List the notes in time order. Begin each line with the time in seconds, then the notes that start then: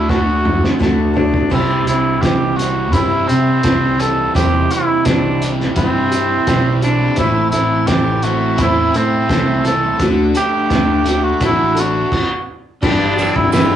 Already playing: D2 D3 A3 D4 E4 F#4
0.09 A3 D4 F#4 A4, kick, snare
0.44 D4 F#4 A4, mid tom
0.64 snare
0.79 D2 D3 A3 D4 F#4 A4, kick, snare
1.14 D4 F#4 A4, floor tom
1.34 kick
1.50 C2 C3 G3 C4 E4 G4, kick, crash
1.85 C2 E3 C4 E4 G4, closed hi-hat
2.21 C2 E3 G3 C4 E4 G4, kick, snare, closed hi-hat
2.56 G3 E4 F#4, closed hi-hat
2.60 C4
2.91 G2 C3 G3 C4 E4, kick, closed hi-hat
2.95 G4
3.26 C3 C4 E4 G4, closed hi-hat
3.31 C4
3.63 C2 G3 C4 E4 G4, kick, snare, closed hi-hat
3.98 E3 C4 E4 G4 A4, closed hi-hat
4.34 E2 C3 G3 C4 E4 G4, kick, closed hi-hat
4.71 E3 C4 E4 G4, closed hi-hat
5.05 C2 E3 G3 C4 D4 E4 G4, kick, snare, closed hi-hat
5.41 G3 C4 E4 G4, closed hi-hat
5.61 snare
5.76 G2 C3 G3 C4 E4 G4, kick, closed hi-hat
6.11 C4 E4 G4, closed hi-hat
6.47 B1 G3 C4 E4 G4, kick, snare, closed hi-hat
6.82 E3 C4 D4 E4 G4, closed hi-hat
6.88 A3 B3
6.93 C4 D4
6.99 E4 F4
7.05 G4 A4
7.10 B4 C5
7.15 A1 A2 E3 A3 C4 E4 A4 D5, kick, closed hi-hat
7.19 A2 A3 A4
7.50 A1 E4 A4, closed hi-hat
7.54 E3 A3 C4 E4
7.87 A1 E3 A3 C4 E4 G4 A4, kick, snare, closed hi-hat
8.22 A3 C4 E4 F#4 A4, closed hi-hat
8.57 E2 A2 E3 A3 C4 E4, kick, closed hi-hat
8.61 E4 A4
8.91 A2 C4 A4, closed hi-hat
8.96 A3 C4 E4
9.29 C2 A3 C4 E4 A4, kick, snare, closed hi-hat
9.64 E3 A3 C4 E4 A4, closed hi-hat
9.98 D2 D3 A3 D4 F#4 A4 F#5, kick, closed hi-hat
10.02 A4
10.34 A3 D4 G4 A4, closed hi-hat
10.70 D2 D3 A3 D4 A4, kick, snare, closed hi-hat
11.04 A3 D4 F#4 A4, closed hi-hat
11.24 F#4
11.40 A1 D3 A3 D4 F#4 A4, kick, closed hi-hat
11.45 E4
11.75 D4 F#4 A4, closed hi-hat
11.80 F#4
12.12 kick, crash
12.81 G1 G2 E3 G3 B3 D4 E4 G4, kick, crash
13.16 E3 G3 B3 D4 G4, ride, tambourine
13.36 G1 E4, kick
13.52 G2 E3 G3 B3 D4 E4 G4, snare, ride, tambourine